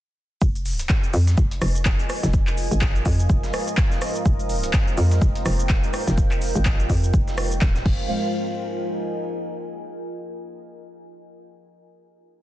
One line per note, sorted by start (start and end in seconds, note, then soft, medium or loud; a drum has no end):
0.42 0.88 F1 loud
0.42 7.82 G#3 medium
0.42 7.82 F4 medium
0.42 7.84 F4 medium
0.42 7.82 C5 medium
0.42 7.82 F5 medium
0.42 kick loud
0.42 shaker medium
0.55 closed hi-hat medium
0.55 shaker soft
0.62 7.86 D#5 medium
0.62 open hi-hat loud
0.62 shaker medium
0.79 closed hi-hat soft
0.79 closed hi-hat medium
0.79 shaker medium
0.84 7.86 A#4 medium
0.89 kick loud
0.89 snare loud
0.89 clap loud
0.89 shaker medium
1.03 closed hi-hat soft
1.03 shaker soft
1.09 4.43 G#5 loud
1.14 1.36 F2 loud
1.14 open hi-hat medium
1.14 shaker medium
1.27 snare medium
1.27 closed hi-hat medium
1.27 shaker medium
1.38 1.60 F1 loud
1.38 kick loud
1.38 shaker medium
1.51 closed hi-hat soft
1.51 shaker soft
1.62 1.97 F1 loud
1.62 cross-stick medium
1.62 open hi-hat loud
1.62 shaker medium
1.75 closed hi-hat medium
1.75 shaker medium
1.85 kick loud
1.85 snare loud
1.85 clap loud
1.85 shaker medium
1.99 closed hi-hat medium
1.99 shaker soft
2.10 cross-stick medium
2.10 open hi-hat medium
2.10 shaker medium
2.23 2.69 F1 loud
2.23 snare soft
2.23 closed hi-hat medium
2.23 shaker medium
2.34 kick loud
2.34 shaker medium
2.47 clap soft
2.47 closed hi-hat medium
2.47 shaker soft
2.58 open hi-hat loud
2.58 shaker medium
2.71 3.04 G#1 loud
2.71 closed hi-hat medium
2.71 shaker medium
2.81 kick loud
2.81 snare loud
2.81 clap loud
2.81 shaker loud
2.81 shaker medium
2.95 closed hi-hat soft
2.95 shaker soft
3.06 3.28 F2 loud
3.06 kick medium
3.06 open hi-hat loud
3.06 shaker medium
3.19 closed hi-hat medium
3.19 shaker medium
3.30 3.52 F1 loud
3.30 kick loud
3.30 shaker medium
3.43 snare soft
3.43 closed hi-hat soft
3.43 shaker soft
3.54 cross-stick medium
3.54 open hi-hat loud
3.54 shaker medium
3.68 closed hi-hat medium
3.68 shaker medium
3.77 kick loud
3.77 snare loud
3.77 clap loud
3.77 shaker medium
3.91 snare soft
3.91 closed hi-hat medium
3.91 shaker soft
4.02 cross-stick medium
4.02 open hi-hat loud
4.02 shaker medium
4.15 closed hi-hat medium
4.15 shaker medium
4.26 4.72 F1 loud
4.26 7.86 G5 loud
4.26 kick loud
4.26 shaker medium
4.39 closed hi-hat medium
4.39 shaker soft
4.50 open hi-hat loud
4.50 shaker medium
4.63 closed hi-hat soft
4.63 closed hi-hat medium
4.63 shaker medium
4.73 kick loud
4.73 snare loud
4.73 clap loud
4.73 shaker medium
4.87 closed hi-hat soft
4.87 shaker soft
4.98 5.20 F2 loud
4.98 open hi-hat loud
4.98 shaker medium
5.11 snare medium
5.11 closed hi-hat medium
5.11 shaker medium
5.22 5.44 F1 loud
5.22 kick loud
5.22 shaker medium
5.35 closed hi-hat soft
5.35 shaker soft
5.46 5.81 F1 loud
5.46 cross-stick medium
5.46 open hi-hat loud
5.46 shaker medium
5.59 closed hi-hat medium
5.59 shaker medium
5.69 kick loud
5.69 snare loud
5.69 clap loud
5.69 shaker medium
5.83 closed hi-hat medium
5.83 shaker soft
5.94 cross-stick medium
5.94 open hi-hat loud
5.94 shaker medium
6.07 6.53 F1 loud
6.07 snare soft
6.07 closed hi-hat medium
6.07 shaker medium
6.18 kick loud
6.18 shaker medium
6.31 clap soft
6.31 closed hi-hat medium
6.31 shaker soft
6.42 open hi-hat loud
6.42 shaker medium
6.55 6.88 G#1 loud
6.55 closed hi-hat medium
6.55 shaker medium
6.65 kick loud
6.65 snare loud
6.65 clap loud
6.65 shaker medium
6.79 closed hi-hat soft
6.79 shaker soft
6.90 7.12 F2 loud
6.90 kick medium
6.90 open hi-hat loud
6.90 shaker medium
7.03 closed hi-hat medium
7.03 shaker medium
7.14 7.60 F1 loud
7.14 kick loud
7.14 shaker medium
7.28 snare soft
7.28 closed hi-hat soft
7.28 shaker soft
7.38 cross-stick medium
7.38 open hi-hat loud
7.38 shaker medium
7.52 closed hi-hat medium
7.52 shaker medium
7.61 7.85 D#1 loud
7.61 kick loud
7.61 snare loud
7.61 clap loud
7.61 shaker medium
7.75 snare soft
7.75 closed hi-hat soft
7.75 shaker soft
7.86 8.08 F1 loud
7.86 8.08 G#3 medium
7.86 9.74 F4 medium
7.86 8.08 F4 medium
7.86 8.08 C5 medium
7.86 8.08 F5 medium
7.86 kick loud
7.86 crash medium
7.94 9.74 A#4 medium
8.26 9.98 D#5 medium
8.31 9.98 G#5 medium